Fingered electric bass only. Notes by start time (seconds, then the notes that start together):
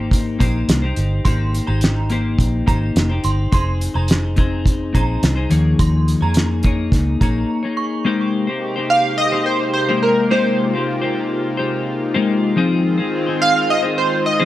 Already playing: G#1
0.40 A#1
0.68 C2
0.97 G1
1.25 G#1
1.68 G#1
2.39 A#1
2.68 G#1
2.96 F1
3.24 G1
3.52 F1
3.95 F1
4.94 A#1
5.23 C2
5.51 D#2
5.79 D#2
6.21 F2
6.92 C#2
7.21 A#1